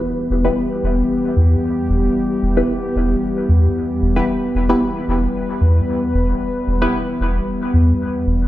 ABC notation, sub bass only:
X:1
M:4/4
L:1/8
Q:"Swing 16ths" 1/4=113
K:Em
V:1 name="Sub bass" clef=bass
z E,,, z E,,, z E,, z E,,, | z E,,, z E,,, z E,, z E,,, | z E,,, z E,,, z E,, z E,,, | z E,,, z E,,, z E,, z E,,, |]